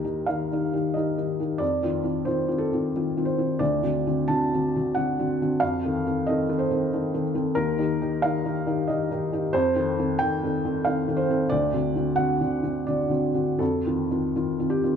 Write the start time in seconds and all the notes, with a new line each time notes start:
Already playing: D#2 D#3 D#4 G4 A#4
0.04 D#3 D#4 G4
0.26 D#3 D#4 G4 F5
0.52 D#3 D#4 G4
0.73 D#3 D#4 G4
0.94 D#3 D#4 G4 D#5
1.18 D#3 D#4 G4
1.39 D#3 D#4 G4
1.58 F2 D5
1.82 D#3 C4 F4
2.03 D#3 C4 F4
2.25 D#3 C4 F4 C5
2.48 D#3 C4 F4
2.58 A4
2.73 D#3 C4 F4
2.96 D#3 C4 F4
3.17 D#3 C4 F4
3.25 C5
3.38 D#3 C4 F4
3.59 D2 D5
3.82 D3 C4 F#4
4.07 D3 C4 F#4
4.28 D3 C4 F#4 A5
4.54 D3 C4 F#4
4.76 D3 C4 F#4
4.95 D3 C4 F#4 F#5
5.19 D3 C4 F#4
5.42 D3 C4 F#4
5.60 F2 F5
5.85 D#3 C4 A4
6.06 D#3 C4 A4
6.27 D#3 C4 A4 D#5
6.49 D#3 C4 A4
6.59 C5
6.71 D#3 C4 A4
6.93 D#3 C4 A4
7.14 D#3 C4 A4
7.34 D#3 C4 A4
7.55 D#2 A#4
7.78 D#3 D#4 G4
8.01 D#3 D#4 G4
8.22 D#3 D#4 G4 F5
8.45 D#3 D#4 G4
8.66 D#3 D#4 G4
8.88 D#3 D#4 G4 D#5
9.11 D#3 D#4 G4
9.32 D#3 D#4 G4
9.53 F2 C5
9.76 D#3 C4 A4
9.99 D#3 C4 A4
10.19 D#3 C4 A4 G5
10.43 D#3 C4 A4
10.65 D#3 C4 A4
10.85 D#3 C4 A4 F5
11.08 D#3 C4 A4
11.17 C5
11.30 D#3 C4 A4
11.49 D2 D5
11.73 D3 C4 F#4
11.95 D3 C4 F#4
12.16 D3 C4 F#4 F#5
12.41 D3 C4 F#4
12.63 D3 C4 F#4
12.87 D3 C4 F#4 D5
13.09 D3 C4 F#4
13.34 D3 C4 F#4
13.59 F2 A4
13.86 D#3 C4 F4
14.11 D#3 C4 F4
14.36 D#3 C4 F4
14.59 D#3 C4 F4
14.70 G4
14.84 D#3 C4 F4